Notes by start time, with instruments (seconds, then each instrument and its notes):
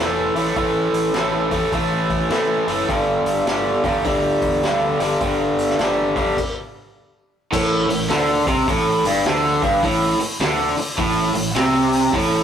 0.00 fingered electric bass E1, overdriven electric guitar A2 E3 A3
0.35 fingered electric bass A1, overdriven electric guitar A2 E3 A3, open hi-hat
0.56 fingered electric bass A1, overdriven electric guitar A2 E3 A3, kick, open hi-hat
0.93 fingered electric bass A1, open hi-hat
1.13 fingered electric bass A1, overdriven electric guitar A2 E3 A3, snare, open hi-hat
1.51 overdriven electric guitar A2 E3 A3, kick, open hi-hat
1.72 fingered electric bass A1, overdriven electric guitar A2 E3 A3, kick, open hi-hat
2.10 kick, open hi-hat
2.29 fingered electric bass A2, overdriven electric guitar A2 E3 A3, snare, open hi-hat
2.67 fingered electric bass F#1, overdriven electric guitar A2 E3 A3, open hi-hat
2.88 fingered electric bass G1, overdriven electric guitar G2 D3 G3, kick, open hi-hat
3.24 fingered electric bass G1, open hi-hat
3.46 fingered electric bass G1, overdriven electric guitar G2 D3 G3, snare, open hi-hat
3.83 fingered electric bass E1, overdriven electric guitar G2 D3 G3, kick, open hi-hat
4.05 fingered electric bass D2, overdriven electric guitar G2 D3 G3, kick, open hi-hat
4.42 fingered electric bass E1, kick, open hi-hat
4.63 fingered electric bass D2, overdriven electric guitar G2 D3 G3, snare, open hi-hat
5.00 fingered electric bass G1, overdriven electric guitar G2 D3 G3, open hi-hat
5.21 fingered electric bass G1, overdriven electric guitar G2 D3 G3, kick, open hi-hat
5.57 fingered electric bass G1, open hi-hat
5.69 snare
5.78 fingered electric bass G#1, overdriven electric guitar G2 D3 G3, snare, open hi-hat
6.16 overdriven electric guitar G2 D3 G3, kick, open hi-hat
6.37 kick, crash
7.52 fingered electric bass A1, overdriven electric guitar A2, kick, crash
7.89 fingered electric bass A1, overdriven electric guitar A2, open hi-hat
8.10 fingered electric bass D2, overdriven electric guitar D3, snare, open hi-hat
8.47 fingered electric bass C2, overdriven electric guitar C3, kick, open hi-hat
8.68 fingered electric bass A1, overdriven electric guitar A2, kick, open hi-hat
9.04 fingered electric bass G1, overdriven electric guitar G2, open hi-hat
9.25 fingered electric bass D2, overdriven electric guitar D3, snare, open hi-hat
9.45 snare
9.62 fingered electric bass G1, overdriven electric guitar G2, kick, open hi-hat
9.83 fingered electric bass A1, overdriven electric guitar A2, kick, open hi-hat
10.19 muted fingered electric bass stroke, muted overdriven electric guitar stroke, open hi-hat
10.40 fingered electric bass D2, overdriven electric guitar D3, snare, open hi-hat
10.77 muted fingered electric bass stroke, muted overdriven electric guitar stroke, open hi-hat
10.98 fingered electric bass A1, overdriven electric guitar A2, kick, open hi-hat
11.34 fingered electric bass A1, overdriven electric guitar A2, open hi-hat
11.54 fingered electric bass C2, overdriven electric guitar C3, snare, open hi-hat
11.93 open hi-hat
12.13 fingered electric bass A1, overdriven electric guitar A2, kick, open hi-hat